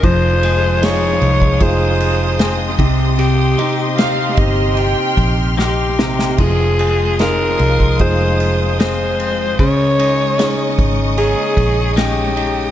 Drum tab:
CC |----------------|----------------|x---------------|----------------|
RD |x-x-x-x-x-x-x-x-|x-x-x-x-x-x-----|--x-x-x-x-x-x-x-|x-x-x-x-x-x-x-x-|
SD |----o-------o---|----o-------o-oo|----o-------o---|----o-------o---|
BD |o------oo-----o-|------o---o-----|o------oo-------|o-----o---o-----|